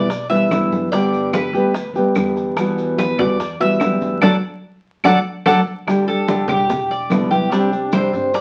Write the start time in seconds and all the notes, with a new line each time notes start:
Already playing: B1 D5
0.10 muted nylon-string guitar stroke, high bongo, high conga, maracas
0.30 E3 G3 B3 E4 E5, high bongo, high conga, maracas
0.51 G1 E3 G3 B3 E4, high bongo, low bongo, high conga, claves, maracas
0.72 high bongo, high conga, maracas
0.92 D3 G3 B3 G4 D5, high bongo, high conga, maracas
1.13 high conga, maracas
1.33 B4, high bongo, high conga, claves, maracas
1.53 D2 G3 B3 G4, high bongo, high conga, maracas
1.74 muted nylon-string guitar stroke, high bongo, high conga, maracas
1.94 D2 G3 B3 G4, high bongo, high conga, maracas
2.15 E2 D3 G3 B3 G4, high bongo, low bongo, claves, maracas
2.36 high bongo, high conga, maracas
2.57 B2 E3 G3 B3 F#4, high bongo, high conga, claves, maracas
2.78 high conga, maracas
2.98 B4, high bongo, high conga, maracas
3.18 E2 E3 G3 B3 F#4 D5, high bongo, low conga, claves, maracas
3.39 muted nylon-string guitar stroke, high bongo, high conga, maracas
3.60 E3 G3 B3 F#4 E5, high bongo, high conga, maracas
3.80 D2 E3 G3 B3, high bongo, low bongo, high conga, claves, maracas
3.84 F#4
4.01 high bongo, high conga, maracas
4.21 D2 F#3 A3 D4 A4 D5 F#5, low bongo, high conga, claves, maracas
5.04 D2 F#3 A3 D4 A4 D5 F#5, low bongo, high conga, claves, maracas
5.46 D2 F#3 A3 D4 A4 D5 F#5, low bongo, high conga, claves, maracas
5.87 D3 G3 D4 G4, high bongo, high conga, claves, maracas
6.07 G3 D4 G4 A4, high conga, maracas
6.28 D3 G3 D4 G4, high bongo, high conga, maracas
6.48 E1 G3 D4 G4, high bongo, low conga, claves, maracas
6.69 muted nylon-string guitar stroke, high bongo, high conga, low conga, maracas
6.90 D5, high bongo, high conga, maracas
7.10 C2 B2 D3 G3 B3 E4, high bongo, low bongo, high conga, claves, maracas
7.31 G3 B3 E4 G4, high bongo, high conga, maracas
7.51 C3 G3 C4 D4 G4, high bongo, maracas
7.72 C4 D4 G4, high conga, maracas
7.92 C3 G3 C4 D4 G4 C5, high bongo, high conga, claves, maracas
8.13 G1 C4 D4 G4, high bongo, high conga, maracas
8.34 D5, muted nylon-string guitar stroke, high bongo, high conga, maracas